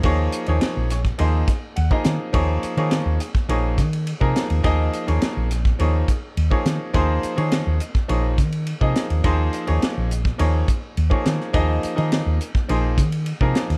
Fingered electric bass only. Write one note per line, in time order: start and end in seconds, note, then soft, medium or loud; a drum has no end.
0.04 0.27 D#2 medium
0.48 0.59 D#2 medium
0.63 muted fingered electric bass stroke soft
0.77 1.11 A#1 medium
1.20 1.42 D#2 medium
1.77 1.89 D#2 medium
2.06 2.17 D#3 medium
2.34 2.57 D#2 medium
2.64 muted fingered electric bass stroke soft
2.77 3.00 D#3 medium
3.06 3.17 D#2 medium
3.35 muted fingered electric bass stroke soft
3.49 3.80 A#1 medium
3.78 4.13 D#3 medium
4.21 4.33 C3 medium
4.50 4.62 D#2 medium
4.64 4.87 D#2 medium
5.08 5.19 D#2 medium
5.23 muted fingered electric bass stroke soft
5.37 5.71 A#1 medium
5.80 6.03 D#2 medium
6.37 6.49 D#2 medium
6.66 6.77 D#3 medium
6.95 7.17 D#2 medium
7.24 muted fingered electric bass stroke soft
7.38 7.61 D#3 medium
7.67 7.78 D#2 medium
7.95 muted fingered electric bass stroke soft
8.10 8.40 A#1 medium
8.38 8.73 D#3 medium
8.81 8.93 C3 medium
9.10 9.22 D#2 medium
9.24 9.47 D#2 medium
9.69 9.80 D#2 medium
9.97 10.31 A#1 medium
10.40 10.63 D#2 medium
10.97 11.09 D#2 medium
11.26 11.37 D#3 medium
11.54 11.77 D#2 medium
11.84 muted fingered electric bass stroke soft
11.98 12.21 D#3 medium
12.26 12.38 D#2 medium
12.55 muted fingered electric bass stroke soft
12.70 12.99 A#1 medium
12.98 13.32 D#3 medium
13.41 13.52 C3 medium
13.70 13.78 D#2 medium